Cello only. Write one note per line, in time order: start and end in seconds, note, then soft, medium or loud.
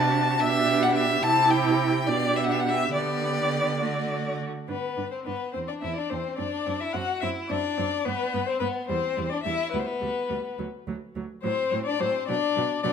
0.00 0.42 C3 medium
0.41 1.23 B2 medium
1.24 2.09 C3 medium
2.08 2.93 B2 medium
2.93 4.46 D3 medium
4.69 4.77 G2 soft
4.97 5.05 G2 soft
5.27 5.35 G2 soft
5.55 5.63 E2 soft
5.84 5.92 E2 soft
6.12 6.20 E2 soft
6.39 6.47 F#2 medium
6.67 6.75 F#2 soft
6.95 7.03 F#2 medium
7.23 7.31 F#2 medium
7.51 7.59 F#2 medium
7.78 7.86 F#2 medium
8.07 8.15 G2 medium
8.34 8.42 G2 medium
8.61 8.69 G2 medium
8.90 8.98 E2 medium
9.18 9.26 E2 medium
9.46 9.54 E2 medium
9.74 9.82 D2 medium
10.02 10.10 D2 medium
10.30 10.38 D2 soft
10.59 10.67 D2 soft
10.88 10.96 D2 medium
11.16 11.24 D2 soft
11.44 11.52 A2 medium
11.73 11.81 A2 medium
12.01 12.09 A2 medium
12.29 12.37 B2 medium
12.58 12.66 B2 medium
12.85 12.93 B2 medium